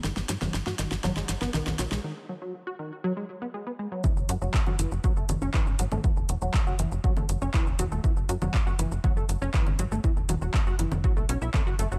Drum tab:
HH |--x---x---x---x-|----------------|--x---x---x---x-|--x---x---x---x-|
SH |xxxxxxxxxxxxxxxx|----------------|xxxxxxxxxxxxxxxx|xxxxxxxxxxxxxxxx|
CP |----------------|----------------|----x-------x---|----x-------x---|
SD |oooooooooooooooo|----------------|----------------|----------------|
CG |---O----O----O--|----------------|O----O----O----O|----O----O----O-|
BD |----------------|----------------|o---o---o---o---|o---o---o---o---|

HH |--x---x---x---x-|--x---x---x---x-|
SH |xxxxxxxxxxxxxxxx|xxxxxxxxxxxxxxxx|
CP |----x-------x---|----x-------x---|
SD |----------------|----------------|
CG |---O----O----O--|--O----O----O---|
BD |o---o---o---o---|o---o---o---o---|